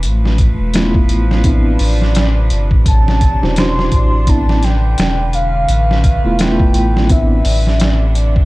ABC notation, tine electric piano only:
X:1
M:4/4
L:1/16
Q:"Swing 16ths" 1/4=85
K:C
V:1 name="Tine electric piano"
z4 [A,B,EF]4 [B,CDE]2 z6 | z3 [DE^Fc] [DEFc]4 [B,CDE]2 z6 | z3 [A,B,EF] [A,B,EF]4 [B,CDE]2 z6 |]